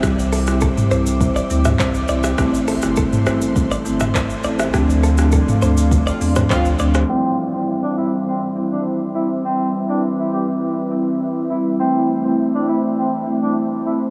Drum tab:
HH |--o-------------|--o-------------|----------o-----|----------------|
SH |xxxxxxxxxxxxxxxx|xxxxxxxxxxxxxxxx|xxxxxxxxxxxxxxxx|----------------|
CP |------------x---|------------x---|------------x---|----------------|
SD |r--r-------r---r|r--r--r----r---r|r--r-------r---r|----------------|
T2 |-----o-----o----|-----o-----o----|-----o-----o----|----------------|
BD |o---o---o---o---|o---o---o---o---|o---o---o---o---|----------------|

HH |----------------|----------------|
SH |----------------|----------------|
CP |----------------|----------------|
SD |----------------|----------------|
T2 |----------------|----------------|
BD |----------------|----------------|